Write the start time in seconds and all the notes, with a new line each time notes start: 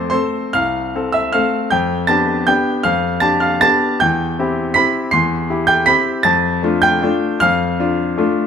Already playing: F2 A3 C4 A4 C5 D5 C6 D6
0.10 A3 C4 A4 C5 C6
0.53 C2 F5 F6
0.95 C4 A4
1.12 E5 E6
1.33 A3 C4 A4 F5 F6
1.70 F2 G5 G6
2.07 B3 D4 G4 A5 A6
2.47 B3 D4 G4 G5 G6
2.83 F2 F5 F6
3.20 D4 G4 A5 A6
3.40 F5 F6
3.61 B3 D4 G4 A5 A6
4.00 E2 G5 G6
4.39 C4 E4 G4
4.74 C4 E4 G4 B5 B6
5.11 E2 C6 C7
5.50 E4 G4
5.67 G5 G6
5.86 C4 E4 G4 B5 B6
6.23 F2 A5 A6
6.63 A3 D4 F4
6.82 G5 G6
7.03 A3 D4 F4
7.40 F2 F5 F6
7.80 D4 F4
8.18 A3 D4 F4